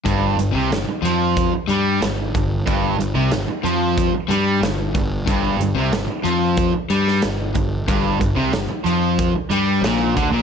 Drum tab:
HH |x-x-x-x-x-x-x-x-|x-x-x-x-x-x-x-x-|x-x-x-x-x-x-x-x-|x-x-x-x-x-x-x-x-|
SD |----o-------o---|----o-------o---|----o------oo---|----o-------o---|
BD |o-------o-----o-|o-------o-----o-|o-------o-----o-|o-o-----o-----o-|